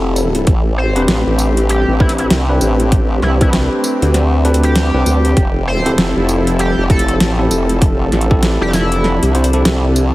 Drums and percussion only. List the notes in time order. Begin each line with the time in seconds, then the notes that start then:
0.16 closed hi-hat, tambourine
0.35 closed hi-hat
0.47 kick, closed hi-hat
0.96 closed hi-hat
1.08 snare, closed hi-hat
1.39 tambourine
1.57 closed hi-hat
1.69 closed hi-hat
2.00 kick
2.09 closed hi-hat
2.18 closed hi-hat
2.30 snare, closed hi-hat
2.61 closed hi-hat, tambourine
2.80 closed hi-hat
2.92 kick, closed hi-hat
3.22 snare
3.41 kick, closed hi-hat
3.53 snare, closed hi-hat
3.84 tambourine
4.02 closed hi-hat
4.14 snare, closed hi-hat
4.45 closed hi-hat
4.54 closed hi-hat
4.63 closed hi-hat
4.76 snare, closed hi-hat
5.06 closed hi-hat, tambourine
5.25 closed hi-hat
5.37 kick, closed hi-hat
5.86 closed hi-hat
5.98 snare, closed hi-hat
6.29 tambourine
6.47 closed hi-hat
6.59 closed hi-hat
6.90 kick, closed hi-hat
6.99 closed hi-hat
7.08 closed hi-hat
7.20 snare, closed hi-hat
7.51 closed hi-hat, tambourine
7.69 closed hi-hat
7.82 kick, closed hi-hat
8.12 snare, closed hi-hat
8.21 closed hi-hat
8.31 kick
8.43 snare, closed hi-hat
8.73 snare, tambourine
8.92 closed hi-hat
9.04 snare
9.23 closed hi-hat
9.35 closed hi-hat
9.44 closed hi-hat
9.53 closed hi-hat
9.65 snare, closed hi-hat
9.96 closed hi-hat, tambourine